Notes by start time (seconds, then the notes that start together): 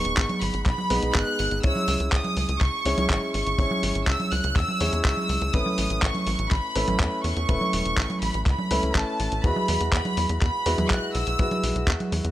Already playing: G#3 B3 D#4 B4 C#6
0.05 D#1, closed hi-hat
0.17 G#1, kick, clap, closed hi-hat
0.29 closed hi-hat, high conga
0.42 G#1 B5, open hi-hat
0.54 G#1, closed hi-hat
0.66 B1 B5, kick, clap, closed hi-hat
0.78 high conga
0.90 B1 G#3 B3 D#4 B4, open hi-hat
1.03 B1, closed hi-hat
1.15 G#1 F#6, kick, clap, closed hi-hat
1.39 G#1, open hi-hat
1.51 G#1, closed hi-hat
1.63 C#2 G#3 C#4 E4 C#5 E6, kick, closed hi-hat
1.76 high conga
1.88 C#2, open hi-hat
2.00 C#2, closed hi-hat
2.12 C#2 D#6, kick, clap, closed hi-hat
2.24 closed hi-hat, high conga
2.37 C#2, open hi-hat
2.49 C#2, closed hi-hat
2.61 C#2 C#6, kick, clap, closed hi-hat
2.85 C#2 G#3 C#4 E4 C#5, open hi-hat
2.98 C#2, closed hi-hat, high conga
3.10 G#1, kick, clap, closed hi-hat
3.34 G#1 C#6, open hi-hat
3.47 G#1, closed hi-hat
3.59 G#1 G#3 C#4 E4 C#5, kick, closed hi-hat
3.71 high conga
3.83 G#1, open hi-hat
3.95 G#1, closed hi-hat
4.07 C#2 E6, kick, clap, closed hi-hat
4.20 closed hi-hat, high conga
4.32 C#2 F#6, open hi-hat
4.44 C#2, closed hi-hat
4.56 E2 E6, kick, clap, closed hi-hat
4.68 high conga
4.80 E2 G#3 C#4 E4 C#5, open hi-hat
4.93 E2, closed hi-hat
5.05 C#2 E6, kick, clap, closed hi-hat
5.17 high conga
5.29 C#2, open hi-hat
5.41 C#2, closed hi-hat
5.54 A1 A3 C#4 E4 B4 D#6, kick, closed hi-hat
5.66 high conga
5.78 A1, open hi-hat
5.90 A1, closed hi-hat
6.02 A1 C#6, kick, clap, closed hi-hat
6.15 closed hi-hat, high conga
6.27 A1, open hi-hat
6.39 A1, closed hi-hat
6.51 A1 B5, kick, clap, closed hi-hat
6.76 A1 A3 C#4 E4 B4, open hi-hat
6.88 A1, closed hi-hat, high conga
7.00 E2, kick, clap, closed hi-hat
7.24 E2 C#6, open hi-hat
7.37 E2, closed hi-hat
7.49 E1 A3 C#4 E4 B4, kick, closed hi-hat
7.61 high conga
7.73 E1, open hi-hat
7.85 E1, closed hi-hat
7.97 A1, kick, clap, closed hi-hat
8.10 closed hi-hat, high conga
8.22 A1 B5, open hi-hat
8.34 A1, closed hi-hat
8.46 C#2 B5, kick, clap, closed hi-hat
8.59 high conga
8.71 C#2 A3 C#4 E4 B4, open hi-hat
8.83 C#2, closed hi-hat
8.95 A1 A5, kick, clap, closed hi-hat
9.20 A1, open hi-hat
9.32 A1, closed hi-hat
9.44 E2 G#3 E4 F#4 B4 B5, kick, closed hi-hat
9.56 high conga
9.68 E2, open hi-hat
9.81 E2, closed hi-hat
9.92 E2 B5, kick, clap, closed hi-hat
10.05 closed hi-hat, high conga
10.17 E2, open hi-hat
10.29 E2, closed hi-hat
10.41 E2 B5, kick, clap, closed hi-hat
10.66 E2 G#3 E4 F#4 B4, open hi-hat
10.78 E2, closed hi-hat, high conga
10.90 B1 F#6, kick, clap, closed hi-hat
11.15 B1 E6, open hi-hat
11.27 B1, closed hi-hat
11.39 B1 G#3 E4 F#4 B4, kick, closed hi-hat
11.51 closed hi-hat, high conga
11.63 B1, open hi-hat
11.75 B1, closed hi-hat
11.87 E2, kick, clap, closed hi-hat
12.00 closed hi-hat, high conga
12.12 E2, open hi-hat
12.24 E2, closed hi-hat